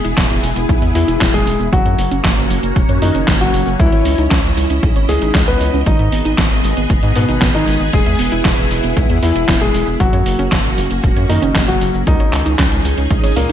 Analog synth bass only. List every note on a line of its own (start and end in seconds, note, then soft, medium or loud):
0.05 0.14 E1 medium
0.17 0.27 E1 loud
0.31 0.40 E1 medium
0.43 0.53 E1 loud
0.56 0.66 E1 medium
0.69 0.79 B1 loud
0.82 0.92 E2 medium
0.95 1.04 E2 loud
1.08 1.17 E1 medium
1.21 1.30 E1 loud
1.34 1.43 E1 medium
1.47 1.56 E1 loud
1.60 1.69 E1 medium
1.73 1.82 F#1 loud
1.86 1.95 F#2 medium
1.99 2.08 F#1 medium
2.11 2.21 F#1 medium
2.24 2.34 F#1 loud
2.37 2.47 F#1 medium
2.50 2.60 F#1 loud
2.63 2.73 F#1 medium
2.76 2.86 E1 medium
2.89 2.98 F#2 medium
3.02 3.11 F#2 medium
3.15 3.24 F#1 medium
3.28 3.37 F#1 loud
3.41 3.50 F#1 medium
3.54 3.63 F#1 loud
3.67 3.76 F#1 medium
3.80 3.89 C#2 loud
3.92 4.02 G#1 medium
4.05 4.15 C#2 medium
4.18 4.28 C#2 medium
4.31 4.41 C#2 loud
4.44 4.54 C#2 medium
4.57 4.67 C#2 loud
4.70 4.80 C#2 medium
4.83 4.92 B1 loud
4.96 5.05 G#1 medium
5.09 5.18 C#2 medium
5.22 5.31 G#1 medium
5.35 5.44 C#2 loud
5.48 5.57 C#2 medium
5.61 5.70 C#2 loud
5.74 5.83 C#2 medium
5.87 5.96 G#1 loud
5.99 6.09 G#2 medium
6.12 6.22 G#1 medium
6.25 6.35 G#1 medium
6.38 6.48 G#1 loud
6.51 6.61 G#1 medium
6.64 6.74 G#1 loud
6.77 6.87 G#1 medium
6.90 6.99 F#1 loud
7.03 7.12 G#2 medium
7.16 7.25 G#2 medium
7.29 7.38 G#1 medium
7.42 7.51 G#1 loud
7.55 7.64 G#1 medium
7.68 7.77 G#1 loud
7.81 7.90 G#1 medium
7.93 8.03 E1 loud
8.07 8.16 E2 medium
8.20 8.29 E1 medium
8.33 8.42 E1 medium
8.45 8.54 E1 loud
8.58 8.68 E1 medium
8.71 8.80 E1 medium
8.84 8.93 E1 medium
8.97 9.06 B1 medium
9.10 9.19 E2 medium
9.23 9.32 E2 loud
9.36 9.45 E1 medium
9.48 9.58 E1 loud
9.61 9.71 E1 medium
9.74 9.84 E1 loud
9.87 9.97 E1 medium
10.00 10.10 F#1 loud
10.13 10.23 F#2 medium
10.26 10.36 F#1 medium
10.39 10.48 F#1 medium
10.52 10.61 F#1 loud
10.65 10.74 F#1 medium
10.78 10.87 F#1 loud
10.91 11.00 F#1 medium
11.04 11.13 E1 loud
11.17 11.26 F#2 medium
11.30 11.39 F#2 medium
11.43 11.52 F#1 medium
11.55 11.65 F#1 loud
11.69 11.78 F#1 medium
11.82 11.91 F#1 loud
11.94 12.04 F#1 medium
12.07 12.17 C#2 loud
12.20 12.30 G#1 medium
12.33 12.43 C#2 loud
12.46 12.56 C#2 medium
12.59 12.68 C#2 loud
12.72 12.81 C#2 medium
12.85 12.94 C#2 loud
12.98 13.07 C#2 medium
13.11 13.20 B1 loud
13.24 13.33 G#1 medium
13.37 13.46 C#2 medium